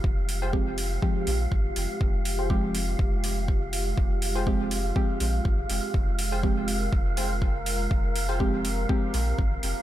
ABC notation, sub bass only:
X:1
M:4/4
L:1/8
Q:"Swing 16ths" 1/4=122
K:Fm
V:1 name="Sub bass" clef=bass
F,,,4 z B,,, A,,, F,,, | F,,,4 F,,,4 | F,,,4 z B,,, A,,, F,,, | F,,,4 F,,,4 |
F,,,4 z B,,, A,,, F,,, |]